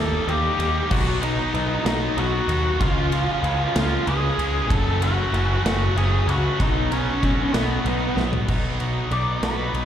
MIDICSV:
0, 0, Header, 1, 6, 480
1, 0, Start_track
1, 0, Tempo, 630915
1, 693, Time_signature, 6, 3, 24, 8
1, 7494, End_track
2, 0, Start_track
2, 0, Title_t, "Lead electric guitar"
2, 0, Program_c, 0, 29
2, 0, Note_on_c, 0, 69, 75
2, 0, Note_on_c, 0, 81, 97
2, 200, Note_off_c, 0, 69, 0
2, 218, Note_on_c, 0, 67, 76
2, 226, Note_off_c, 0, 81, 0
2, 228, Note_on_c, 0, 79, 108
2, 666, Note_off_c, 0, 67, 0
2, 671, Note_off_c, 0, 79, 0
2, 687, Note_on_c, 0, 66, 85
2, 699, Note_on_c, 0, 78, 103
2, 914, Note_off_c, 0, 66, 0
2, 920, Note_off_c, 0, 78, 0
2, 938, Note_on_c, 0, 63, 78
2, 943, Note_on_c, 0, 75, 80
2, 1387, Note_off_c, 0, 63, 0
2, 1388, Note_off_c, 0, 75, 0
2, 1417, Note_on_c, 0, 63, 70
2, 1426, Note_on_c, 0, 75, 84
2, 1640, Note_off_c, 0, 63, 0
2, 1662, Note_on_c, 0, 66, 83
2, 1666, Note_on_c, 0, 78, 101
2, 1668, Note_off_c, 0, 75, 0
2, 2109, Note_off_c, 0, 66, 0
2, 2111, Note_off_c, 0, 78, 0
2, 2141, Note_on_c, 0, 65, 73
2, 2145, Note_on_c, 0, 77, 99
2, 2829, Note_off_c, 0, 65, 0
2, 2857, Note_off_c, 0, 77, 0
2, 2860, Note_on_c, 0, 65, 65
2, 2866, Note_on_c, 0, 77, 89
2, 3081, Note_off_c, 0, 65, 0
2, 3105, Note_on_c, 0, 68, 84
2, 3107, Note_on_c, 0, 80, 97
2, 3108, Note_off_c, 0, 77, 0
2, 3550, Note_off_c, 0, 80, 0
2, 3551, Note_off_c, 0, 68, 0
2, 3584, Note_on_c, 0, 69, 76
2, 3585, Note_on_c, 0, 81, 91
2, 3804, Note_off_c, 0, 69, 0
2, 3827, Note_off_c, 0, 81, 0
2, 3828, Note_on_c, 0, 66, 75
2, 3832, Note_on_c, 0, 78, 96
2, 4272, Note_off_c, 0, 66, 0
2, 4299, Note_off_c, 0, 78, 0
2, 4307, Note_on_c, 0, 66, 69
2, 4311, Note_on_c, 0, 78, 76
2, 4526, Note_off_c, 0, 66, 0
2, 4543, Note_on_c, 0, 68, 68
2, 4545, Note_off_c, 0, 78, 0
2, 4548, Note_on_c, 0, 80, 88
2, 4764, Note_off_c, 0, 68, 0
2, 4788, Note_off_c, 0, 80, 0
2, 4795, Note_on_c, 0, 78, 83
2, 4802, Note_on_c, 0, 66, 70
2, 5013, Note_off_c, 0, 66, 0
2, 5032, Note_off_c, 0, 78, 0
2, 5033, Note_on_c, 0, 63, 71
2, 5041, Note_on_c, 0, 75, 97
2, 5248, Note_off_c, 0, 63, 0
2, 5266, Note_on_c, 0, 61, 70
2, 5267, Note_off_c, 0, 75, 0
2, 5270, Note_on_c, 0, 73, 75
2, 5711, Note_off_c, 0, 61, 0
2, 5732, Note_on_c, 0, 59, 56
2, 5734, Note_on_c, 0, 71, 68
2, 5755, Note_off_c, 0, 73, 0
2, 6244, Note_off_c, 0, 59, 0
2, 6244, Note_off_c, 0, 71, 0
2, 6943, Note_on_c, 0, 74, 92
2, 7172, Note_off_c, 0, 74, 0
2, 7182, Note_on_c, 0, 71, 84
2, 7494, Note_off_c, 0, 71, 0
2, 7494, End_track
3, 0, Start_track
3, 0, Title_t, "Clean electric guitar"
3, 0, Program_c, 1, 27
3, 7174, Note_on_c, 1, 66, 67
3, 7415, Note_on_c, 1, 63, 72
3, 7494, Note_off_c, 1, 63, 0
3, 7494, Note_off_c, 1, 66, 0
3, 7494, End_track
4, 0, Start_track
4, 0, Title_t, "Distorted electric guitar"
4, 0, Program_c, 2, 30
4, 0, Note_on_c, 2, 51, 80
4, 0, Note_on_c, 2, 55, 57
4, 0, Note_on_c, 2, 58, 69
4, 0, Note_on_c, 2, 63, 72
4, 195, Note_off_c, 2, 51, 0
4, 200, Note_off_c, 2, 55, 0
4, 204, Note_on_c, 2, 51, 70
4, 207, Note_off_c, 2, 58, 0
4, 209, Note_on_c, 2, 55, 76
4, 211, Note_off_c, 2, 63, 0
4, 216, Note_on_c, 2, 58, 75
4, 220, Note_on_c, 2, 63, 87
4, 440, Note_off_c, 2, 63, 0
4, 448, Note_off_c, 2, 58, 0
4, 449, Note_on_c, 2, 63, 76
4, 455, Note_off_c, 2, 55, 0
4, 457, Note_on_c, 2, 58, 66
4, 465, Note_on_c, 2, 55, 60
4, 675, Note_off_c, 2, 51, 0
4, 677, Note_off_c, 2, 63, 0
4, 681, Note_off_c, 2, 58, 0
4, 685, Note_off_c, 2, 55, 0
4, 686, Note_on_c, 2, 47, 98
4, 693, Note_on_c, 2, 54, 106
4, 698, Note_on_c, 2, 59, 99
4, 702, Note_on_c, 2, 63, 97
4, 919, Note_off_c, 2, 63, 0
4, 928, Note_off_c, 2, 59, 0
4, 928, Note_on_c, 2, 63, 79
4, 937, Note_off_c, 2, 54, 0
4, 937, Note_on_c, 2, 59, 69
4, 946, Note_on_c, 2, 54, 59
4, 1162, Note_off_c, 2, 47, 0
4, 1167, Note_off_c, 2, 54, 0
4, 1171, Note_on_c, 2, 47, 73
4, 1173, Note_off_c, 2, 59, 0
4, 1176, Note_on_c, 2, 54, 90
4, 1178, Note_off_c, 2, 63, 0
4, 1182, Note_on_c, 2, 59, 83
4, 1187, Note_on_c, 2, 63, 93
4, 1404, Note_off_c, 2, 63, 0
4, 1413, Note_off_c, 2, 59, 0
4, 1413, Note_on_c, 2, 63, 81
4, 1421, Note_off_c, 2, 54, 0
4, 1422, Note_on_c, 2, 59, 76
4, 1430, Note_on_c, 2, 54, 67
4, 1640, Note_off_c, 2, 47, 0
4, 1644, Note_off_c, 2, 54, 0
4, 1649, Note_on_c, 2, 47, 75
4, 1652, Note_off_c, 2, 59, 0
4, 1653, Note_on_c, 2, 54, 78
4, 1656, Note_off_c, 2, 63, 0
4, 1661, Note_on_c, 2, 59, 82
4, 1665, Note_on_c, 2, 63, 83
4, 1873, Note_off_c, 2, 63, 0
4, 1882, Note_on_c, 2, 63, 77
4, 1883, Note_off_c, 2, 59, 0
4, 1890, Note_off_c, 2, 54, 0
4, 1892, Note_on_c, 2, 59, 67
4, 1899, Note_on_c, 2, 54, 62
4, 2115, Note_off_c, 2, 63, 0
4, 2117, Note_off_c, 2, 47, 0
4, 2120, Note_off_c, 2, 59, 0
4, 2120, Note_on_c, 2, 49, 98
4, 2123, Note_off_c, 2, 54, 0
4, 2127, Note_on_c, 2, 53, 86
4, 2134, Note_on_c, 2, 56, 107
4, 2137, Note_on_c, 2, 61, 107
4, 2363, Note_off_c, 2, 61, 0
4, 2366, Note_on_c, 2, 61, 70
4, 2368, Note_off_c, 2, 56, 0
4, 2376, Note_off_c, 2, 53, 0
4, 2377, Note_on_c, 2, 56, 61
4, 2385, Note_on_c, 2, 53, 60
4, 2597, Note_off_c, 2, 49, 0
4, 2605, Note_off_c, 2, 53, 0
4, 2606, Note_on_c, 2, 49, 85
4, 2608, Note_off_c, 2, 56, 0
4, 2614, Note_on_c, 2, 53, 83
4, 2617, Note_on_c, 2, 56, 90
4, 2621, Note_off_c, 2, 61, 0
4, 2624, Note_on_c, 2, 61, 87
4, 2840, Note_off_c, 2, 61, 0
4, 2846, Note_off_c, 2, 56, 0
4, 2849, Note_on_c, 2, 61, 79
4, 2855, Note_off_c, 2, 53, 0
4, 2856, Note_on_c, 2, 56, 73
4, 2864, Note_on_c, 2, 53, 64
4, 3083, Note_off_c, 2, 49, 0
4, 3092, Note_off_c, 2, 53, 0
4, 3092, Note_on_c, 2, 49, 80
4, 3093, Note_off_c, 2, 56, 0
4, 3100, Note_off_c, 2, 61, 0
4, 3101, Note_on_c, 2, 53, 89
4, 3103, Note_on_c, 2, 56, 79
4, 3109, Note_on_c, 2, 61, 82
4, 3323, Note_off_c, 2, 61, 0
4, 3329, Note_off_c, 2, 56, 0
4, 3332, Note_on_c, 2, 61, 70
4, 3338, Note_off_c, 2, 53, 0
4, 3338, Note_on_c, 2, 56, 73
4, 3347, Note_on_c, 2, 53, 61
4, 3560, Note_off_c, 2, 49, 0
4, 3560, Note_off_c, 2, 61, 0
4, 3563, Note_off_c, 2, 56, 0
4, 3567, Note_off_c, 2, 53, 0
4, 3577, Note_on_c, 2, 42, 92
4, 3581, Note_on_c, 2, 49, 99
4, 3585, Note_on_c, 2, 54, 96
4, 3590, Note_on_c, 2, 57, 107
4, 3594, Note_on_c, 2, 61, 105
4, 3802, Note_off_c, 2, 61, 0
4, 3811, Note_on_c, 2, 61, 78
4, 3814, Note_off_c, 2, 57, 0
4, 3823, Note_on_c, 2, 57, 71
4, 3827, Note_off_c, 2, 54, 0
4, 3830, Note_on_c, 2, 54, 68
4, 4048, Note_off_c, 2, 49, 0
4, 4057, Note_off_c, 2, 42, 0
4, 4057, Note_on_c, 2, 49, 83
4, 4058, Note_off_c, 2, 54, 0
4, 4058, Note_off_c, 2, 57, 0
4, 4061, Note_on_c, 2, 54, 80
4, 4062, Note_off_c, 2, 61, 0
4, 4067, Note_on_c, 2, 57, 86
4, 4071, Note_on_c, 2, 61, 84
4, 4289, Note_off_c, 2, 61, 0
4, 4298, Note_on_c, 2, 61, 89
4, 4300, Note_off_c, 2, 57, 0
4, 4309, Note_on_c, 2, 57, 73
4, 4311, Note_off_c, 2, 54, 0
4, 4314, Note_on_c, 2, 54, 69
4, 4529, Note_off_c, 2, 49, 0
4, 4539, Note_on_c, 2, 49, 71
4, 4541, Note_off_c, 2, 54, 0
4, 4543, Note_off_c, 2, 57, 0
4, 4544, Note_on_c, 2, 54, 80
4, 4545, Note_off_c, 2, 61, 0
4, 4552, Note_on_c, 2, 57, 80
4, 4554, Note_on_c, 2, 61, 80
4, 4767, Note_off_c, 2, 61, 0
4, 4776, Note_off_c, 2, 57, 0
4, 4776, Note_on_c, 2, 61, 82
4, 4785, Note_on_c, 2, 57, 62
4, 4790, Note_off_c, 2, 54, 0
4, 4793, Note_on_c, 2, 54, 60
4, 5002, Note_off_c, 2, 61, 0
4, 5003, Note_off_c, 2, 49, 0
4, 5006, Note_off_c, 2, 57, 0
4, 5020, Note_on_c, 2, 47, 95
4, 5023, Note_off_c, 2, 54, 0
4, 5026, Note_on_c, 2, 54, 112
4, 5031, Note_on_c, 2, 59, 99
4, 5036, Note_on_c, 2, 63, 99
4, 5249, Note_off_c, 2, 63, 0
4, 5258, Note_on_c, 2, 63, 79
4, 5260, Note_off_c, 2, 59, 0
4, 5265, Note_off_c, 2, 54, 0
4, 5269, Note_on_c, 2, 59, 73
4, 5275, Note_on_c, 2, 54, 66
4, 5485, Note_off_c, 2, 47, 0
4, 5494, Note_off_c, 2, 54, 0
4, 5495, Note_on_c, 2, 47, 77
4, 5500, Note_off_c, 2, 59, 0
4, 5503, Note_off_c, 2, 63, 0
4, 5503, Note_on_c, 2, 54, 80
4, 5509, Note_on_c, 2, 59, 89
4, 5513, Note_on_c, 2, 63, 90
4, 5725, Note_off_c, 2, 63, 0
4, 5733, Note_off_c, 2, 59, 0
4, 5734, Note_on_c, 2, 63, 74
4, 5740, Note_off_c, 2, 54, 0
4, 5743, Note_on_c, 2, 59, 73
4, 5749, Note_on_c, 2, 54, 63
4, 5963, Note_off_c, 2, 47, 0
4, 5970, Note_off_c, 2, 54, 0
4, 5972, Note_on_c, 2, 47, 73
4, 5976, Note_off_c, 2, 59, 0
4, 5979, Note_on_c, 2, 54, 76
4, 5980, Note_off_c, 2, 63, 0
4, 5985, Note_on_c, 2, 59, 82
4, 5989, Note_on_c, 2, 63, 95
4, 6204, Note_off_c, 2, 63, 0
4, 6210, Note_off_c, 2, 59, 0
4, 6213, Note_on_c, 2, 63, 69
4, 6219, Note_off_c, 2, 54, 0
4, 6219, Note_on_c, 2, 59, 64
4, 6228, Note_on_c, 2, 54, 63
4, 6439, Note_off_c, 2, 47, 0
4, 6439, Note_off_c, 2, 63, 0
4, 6443, Note_off_c, 2, 59, 0
4, 6445, Note_off_c, 2, 54, 0
4, 6448, Note_on_c, 2, 47, 82
4, 6454, Note_on_c, 2, 54, 84
4, 6462, Note_on_c, 2, 59, 81
4, 6465, Note_on_c, 2, 63, 93
4, 6682, Note_off_c, 2, 63, 0
4, 6691, Note_off_c, 2, 59, 0
4, 6691, Note_on_c, 2, 63, 71
4, 6698, Note_off_c, 2, 54, 0
4, 6701, Note_on_c, 2, 59, 62
4, 6707, Note_on_c, 2, 54, 52
4, 6923, Note_off_c, 2, 47, 0
4, 6927, Note_off_c, 2, 54, 0
4, 6932, Note_on_c, 2, 47, 75
4, 6935, Note_off_c, 2, 59, 0
4, 6937, Note_off_c, 2, 63, 0
4, 6937, Note_on_c, 2, 54, 66
4, 6944, Note_on_c, 2, 59, 75
4, 6946, Note_on_c, 2, 63, 77
4, 7161, Note_off_c, 2, 63, 0
4, 7165, Note_off_c, 2, 59, 0
4, 7170, Note_on_c, 2, 63, 92
4, 7172, Note_off_c, 2, 54, 0
4, 7174, Note_off_c, 2, 47, 0
4, 7174, Note_on_c, 2, 59, 76
4, 7181, Note_on_c, 2, 54, 80
4, 7183, Note_on_c, 2, 47, 72
4, 7494, Note_off_c, 2, 47, 0
4, 7494, Note_off_c, 2, 54, 0
4, 7494, Note_off_c, 2, 59, 0
4, 7494, Note_off_c, 2, 63, 0
4, 7494, End_track
5, 0, Start_track
5, 0, Title_t, "Picked electric bass"
5, 0, Program_c, 3, 34
5, 0, Note_on_c, 3, 39, 89
5, 141, Note_off_c, 3, 39, 0
5, 208, Note_on_c, 3, 39, 91
5, 383, Note_off_c, 3, 39, 0
5, 448, Note_on_c, 3, 39, 87
5, 623, Note_off_c, 3, 39, 0
5, 691, Note_on_c, 3, 35, 92
5, 1039, Note_off_c, 3, 35, 0
5, 1171, Note_on_c, 3, 35, 103
5, 1346, Note_off_c, 3, 35, 0
5, 1405, Note_on_c, 3, 35, 85
5, 1582, Note_off_c, 3, 35, 0
5, 1649, Note_on_c, 3, 35, 97
5, 1825, Note_off_c, 3, 35, 0
5, 1887, Note_on_c, 3, 39, 89
5, 2134, Note_off_c, 3, 39, 0
5, 2134, Note_on_c, 3, 37, 97
5, 2481, Note_off_c, 3, 37, 0
5, 2611, Note_on_c, 3, 37, 99
5, 2786, Note_off_c, 3, 37, 0
5, 2857, Note_on_c, 3, 37, 92
5, 3030, Note_off_c, 3, 37, 0
5, 3098, Note_on_c, 3, 37, 98
5, 3270, Note_off_c, 3, 37, 0
5, 3331, Note_on_c, 3, 37, 96
5, 3576, Note_off_c, 3, 37, 0
5, 3576, Note_on_c, 3, 30, 96
5, 3922, Note_off_c, 3, 30, 0
5, 4051, Note_on_c, 3, 30, 101
5, 4226, Note_off_c, 3, 30, 0
5, 4294, Note_on_c, 3, 30, 82
5, 4468, Note_off_c, 3, 30, 0
5, 4531, Note_on_c, 3, 30, 102
5, 4706, Note_off_c, 3, 30, 0
5, 4769, Note_on_c, 3, 37, 87
5, 4945, Note_off_c, 3, 37, 0
5, 5018, Note_on_c, 3, 35, 93
5, 5363, Note_off_c, 3, 35, 0
5, 5501, Note_on_c, 3, 35, 93
5, 5672, Note_off_c, 3, 35, 0
5, 5735, Note_on_c, 3, 35, 88
5, 5908, Note_off_c, 3, 35, 0
5, 5973, Note_on_c, 3, 35, 94
5, 6147, Note_off_c, 3, 35, 0
5, 6213, Note_on_c, 3, 35, 92
5, 6451, Note_off_c, 3, 35, 0
5, 6454, Note_on_c, 3, 35, 91
5, 6846, Note_off_c, 3, 35, 0
5, 6930, Note_on_c, 3, 35, 85
5, 7128, Note_off_c, 3, 35, 0
5, 7168, Note_on_c, 3, 35, 75
5, 7367, Note_off_c, 3, 35, 0
5, 7407, Note_on_c, 3, 35, 87
5, 7494, Note_off_c, 3, 35, 0
5, 7494, End_track
6, 0, Start_track
6, 0, Title_t, "Drums"
6, 217, Note_on_c, 9, 51, 75
6, 293, Note_off_c, 9, 51, 0
6, 454, Note_on_c, 9, 51, 82
6, 530, Note_off_c, 9, 51, 0
6, 691, Note_on_c, 9, 49, 116
6, 693, Note_on_c, 9, 36, 111
6, 767, Note_off_c, 9, 49, 0
6, 769, Note_off_c, 9, 36, 0
6, 934, Note_on_c, 9, 51, 88
6, 1010, Note_off_c, 9, 51, 0
6, 1176, Note_on_c, 9, 51, 79
6, 1252, Note_off_c, 9, 51, 0
6, 1415, Note_on_c, 9, 51, 105
6, 1416, Note_on_c, 9, 38, 113
6, 1491, Note_off_c, 9, 51, 0
6, 1492, Note_off_c, 9, 38, 0
6, 1655, Note_on_c, 9, 51, 83
6, 1731, Note_off_c, 9, 51, 0
6, 1894, Note_on_c, 9, 51, 84
6, 1970, Note_off_c, 9, 51, 0
6, 2135, Note_on_c, 9, 36, 122
6, 2136, Note_on_c, 9, 51, 112
6, 2211, Note_off_c, 9, 36, 0
6, 2212, Note_off_c, 9, 51, 0
6, 2375, Note_on_c, 9, 51, 90
6, 2451, Note_off_c, 9, 51, 0
6, 2617, Note_on_c, 9, 51, 77
6, 2693, Note_off_c, 9, 51, 0
6, 2859, Note_on_c, 9, 51, 113
6, 2860, Note_on_c, 9, 38, 118
6, 2935, Note_off_c, 9, 51, 0
6, 2936, Note_off_c, 9, 38, 0
6, 3099, Note_on_c, 9, 51, 84
6, 3175, Note_off_c, 9, 51, 0
6, 3341, Note_on_c, 9, 51, 83
6, 3418, Note_off_c, 9, 51, 0
6, 3579, Note_on_c, 9, 36, 120
6, 3582, Note_on_c, 9, 51, 117
6, 3655, Note_off_c, 9, 36, 0
6, 3658, Note_off_c, 9, 51, 0
6, 3819, Note_on_c, 9, 51, 89
6, 3895, Note_off_c, 9, 51, 0
6, 4063, Note_on_c, 9, 51, 81
6, 4139, Note_off_c, 9, 51, 0
6, 4304, Note_on_c, 9, 51, 102
6, 4305, Note_on_c, 9, 38, 115
6, 4381, Note_off_c, 9, 38, 0
6, 4381, Note_off_c, 9, 51, 0
6, 4545, Note_on_c, 9, 51, 73
6, 4621, Note_off_c, 9, 51, 0
6, 4783, Note_on_c, 9, 51, 77
6, 4859, Note_off_c, 9, 51, 0
6, 5021, Note_on_c, 9, 36, 118
6, 5023, Note_on_c, 9, 51, 100
6, 5097, Note_off_c, 9, 36, 0
6, 5099, Note_off_c, 9, 51, 0
6, 5263, Note_on_c, 9, 51, 82
6, 5339, Note_off_c, 9, 51, 0
6, 5501, Note_on_c, 9, 36, 76
6, 5501, Note_on_c, 9, 51, 74
6, 5577, Note_off_c, 9, 36, 0
6, 5577, Note_off_c, 9, 51, 0
6, 5738, Note_on_c, 9, 51, 103
6, 5739, Note_on_c, 9, 38, 122
6, 5815, Note_off_c, 9, 38, 0
6, 5815, Note_off_c, 9, 51, 0
6, 5977, Note_on_c, 9, 51, 81
6, 6053, Note_off_c, 9, 51, 0
6, 6216, Note_on_c, 9, 38, 66
6, 6292, Note_off_c, 9, 38, 0
6, 6337, Note_on_c, 9, 43, 101
6, 6413, Note_off_c, 9, 43, 0
6, 6454, Note_on_c, 9, 57, 104
6, 6456, Note_on_c, 9, 36, 114
6, 6530, Note_off_c, 9, 57, 0
6, 6532, Note_off_c, 9, 36, 0
6, 6695, Note_on_c, 9, 51, 72
6, 6771, Note_off_c, 9, 51, 0
6, 6933, Note_on_c, 9, 51, 66
6, 7009, Note_off_c, 9, 51, 0
6, 7173, Note_on_c, 9, 51, 84
6, 7174, Note_on_c, 9, 38, 102
6, 7249, Note_off_c, 9, 51, 0
6, 7250, Note_off_c, 9, 38, 0
6, 7414, Note_on_c, 9, 51, 65
6, 7490, Note_off_c, 9, 51, 0
6, 7494, End_track
0, 0, End_of_file